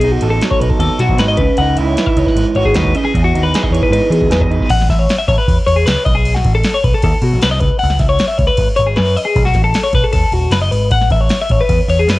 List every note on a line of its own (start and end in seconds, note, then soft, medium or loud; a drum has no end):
0.00 0.16 B1 medium
0.00 0.79 B2 medium
0.00 0.62 D#4 medium
0.00 0.12 G#4 medium
0.00 ride loud
0.12 0.30 F#4 medium
0.21 0.38 A1 medium
0.21 1.00 A4 medium
0.21 ride medium
0.30 0.50 A4 medium
0.41 1.36 F#3 medium
0.41 snare loud
0.41 ride loud
0.51 0.60 C#5 medium
0.51 kick medium
0.60 0.69 B1 medium
0.60 1.22 D#4 medium
0.60 0.70 B4 medium
0.60 ride medium
0.70 0.79 A4 medium
0.70 kick medium
0.79 0.88 D#2 loud
0.79 1.36 B2 medium
0.79 0.99 A4 medium
0.79 ride loud
0.99 1.11 B2 medium
0.99 1.19 F#4 medium
0.99 1.37 F#4 medium
0.99 snare soft
0.99 ride medium
1.09 1.17 B1 loud
1.09 kick medium
1.18 1.35 G#2 loud
1.18 1.43 D#4 medium
1.18 1.28 B4 medium
1.18 snare loud
1.18 ride loud
1.28 1.38 D#5 medium
1.37 1.47 C#2 medium
1.37 1.97 C#3 medium
1.37 1.57 B4 medium
1.37 kick loud
1.37 ride medium
1.57 1.75 C#2 loud
1.57 1.77 F#5 medium
1.57 ride medium
1.61 2.17 D#4 medium
1.77 1.94 C#2 medium
1.77 2.57 E4 medium
1.77 1.87 E5 medium
1.77 ride medium
1.87 2.06 C#5 medium
1.97 3.38 E3 medium
1.97 snare loud
1.97 ride medium
2.06 2.19 E5 medium
2.06 kick medium
2.17 2.25 C#2 medium
2.17 2.75 D#4 medium
2.17 2.27 C#5 medium
2.17 ride medium
2.26 2.46 B4 medium
2.26 kick medium
2.26 snare soft
2.35 2.44 G#1 loud
2.35 2.92 G#2 medium
2.35 ride loud
2.55 2.72 G#1 medium
2.55 2.93 F#4 medium
2.55 2.65 C#5 medium
2.55 ride medium
2.65 2.75 G#4 medium
2.65 kick medium
2.75 2.92 D#2 loud
2.75 2.92 D#4 medium
2.75 2.94 B4 medium
2.75 snare loud
2.75 ride loud
2.85 kick medium
2.95 3.11 C#3 medium
2.95 3.04 D#5 medium
2.95 ride medium
3.05 3.24 G#4 medium
3.14 4.69 E2 medium
3.14 3.31 E2 loud
3.14 kick loud
3.14 ride medium
3.24 3.43 F#4 medium
3.35 3.51 D#2 medium
3.35 3.92 D#4 medium
3.35 ride medium
3.43 3.63 B4 medium
3.54 4.30 G#4 medium
3.54 snare loud
3.54 ride loud
3.63 3.72 D#5 medium
3.63 kick medium
3.71 3.80 E2 medium
3.71 4.67 E3 medium
3.71 3.82 C#5 medium
3.71 ride medium
3.82 3.91 B4 medium
3.82 kick medium
3.90 3.99 G#2 medium
3.90 4.49 D#4 medium
3.90 4.11 B4 medium
3.90 ride loud
4.10 4.68 B2 medium
4.10 4.23 E3 medium
4.10 4.31 G#4 medium
4.10 ride medium
4.21 4.29 E2 medium
4.21 kick medium
4.30 4.47 E2 medium
4.30 4.67 G#4 medium
4.30 4.41 B4 medium
4.30 snare loud
4.30 ride loud
4.41 4.51 D#5 medium
4.41 kick medium
4.47 4.57 E2 medium
4.47 4.67 D#4 medium
4.51 4.70 B4 medium
4.51 ride medium
4.60 kick medium
4.60 snare soft
4.69 4.86 A1 loud
4.69 4.89 F#5 medium
4.69 kick loud
4.69 crash loud
4.69 crash medium
4.81 snare soft
4.89 5.06 A1 medium
4.89 4.99 E5 medium
4.89 kick medium
4.89 snare soft
4.89 crash medium
4.99 5.18 C#5 medium
5.09 snare loud
5.09 crash medium
5.19 5.28 E5 medium
5.28 5.36 A1 medium
5.28 5.38 C#5 medium
5.28 kick medium
5.28 crash medium
5.38 5.57 B4 medium
5.48 5.56 E2 loud
5.48 kick loud
5.48 crash loud
5.67 5.84 E2 medium
5.67 5.76 C#5 medium
5.67 crash medium
5.76 5.86 G#4 medium
5.86 5.95 C#2 loud
5.86 6.05 B4 medium
5.86 snare loud
5.86 crash loud
6.05 6.40 B1 medium
6.05 6.15 D#5 medium
6.05 kick loud
6.05 crash medium
6.15 6.35 G#4 medium
6.25 crash medium
6.35 6.54 F#4 medium
6.35 snare soft
6.44 6.62 A1 medium
6.44 kick medium
6.44 crash medium
6.55 6.74 A4 medium
6.63 snare loud
6.63 crash medium
6.74 6.84 C#5 medium
6.84 6.92 B1 medium
6.84 6.93 B4 medium
6.84 kick loud
6.84 crash medium
6.94 7.03 A4 medium
7.02 7.12 D#2 loud
7.02 7.24 A4 medium
7.02 kick loud
7.02 crash loud
7.22 7.34 B2 loud
7.22 7.43 F#4 medium
7.22 crash medium
7.33 7.41 B1 loud
7.42 7.59 C2 loud
7.42 7.51 B4 medium
7.42 snare loud
7.42 crash medium
7.51 7.60 D#5 medium
7.60 7.70 C#2 medium
7.60 7.79 B4 medium
7.60 kick loud
7.60 crash medium
7.79 8.00 F#5 medium
7.79 crash medium
7.83 7.99 C#2 loud
7.90 snare soft
7.99 8.17 C#2 loud
7.99 8.09 E5 medium
7.99 kick medium
7.99 snare soft
7.99 crash medium
8.09 8.28 C#5 medium
8.19 snare loud
8.19 crash medium
8.28 8.38 E5 medium
8.38 8.48 C#2 medium
8.38 8.47 C#5 medium
8.38 kick medium
8.38 crash medium
8.47 8.68 B4 medium
8.57 8.67 G#1 loud
8.57 kick loud
8.57 crash loud
8.76 8.96 G#1 medium
8.76 8.87 C#5 medium
8.76 crash medium
8.87 8.97 G#4 medium
8.96 9.15 F#2 loud
8.96 9.17 B4 medium
8.96 snare loud
8.96 crash loud
9.17 9.27 D#5 medium
9.17 crash medium
9.25 9.45 G#4 medium
9.36 9.53 B1 loud
9.36 kick loud
9.36 crash medium
9.45 9.64 F#4 medium
9.45 snare soft
9.54 9.73 A1 medium
9.54 kick medium
9.54 snare soft
9.54 crash medium
9.64 9.84 A4 medium
9.74 snare loud
9.74 crash loud
9.84 9.94 C#5 medium
9.93 10.02 B1 medium
9.93 10.05 B4 medium
9.93 kick medium
9.93 crash medium
10.04 10.12 A4 medium
10.13 10.22 D#2 loud
10.13 10.33 A4 medium
10.13 kick medium
10.13 crash loud
10.32 10.50 D#1 medium
10.32 10.53 F#4 medium
10.32 crash medium
10.51 10.69 F#1 medium
10.51 10.61 B4 medium
10.51 snare loud
10.51 crash medium
10.62 10.71 D#5 medium
10.71 10.91 G#1 medium
10.71 10.91 B4 medium
10.71 crash medium
10.91 11.09 A1 loud
10.91 11.11 F#5 medium
10.91 kick loud
10.91 crash medium
11.01 snare soft
11.10 11.28 A1 medium
11.10 11.21 E5 medium
11.10 kick medium
11.10 crash medium
11.21 11.41 C#5 medium
11.29 snare loud
11.29 crash medium
11.42 11.51 E5 medium
11.49 11.59 A1 loud
11.49 11.61 C#5 medium
11.49 kick medium
11.49 crash medium
11.61 11.80 B4 medium
11.69 11.78 E2 loud
11.69 kick medium
11.69 crash medium
11.88 12.06 E2 medium
11.88 11.99 C#5 medium
11.88 crash medium
11.99 12.09 G#4 medium
12.08 12.17 F#2 loud
12.08 12.19 B4 medium
12.08 snare loud
12.08 crash medium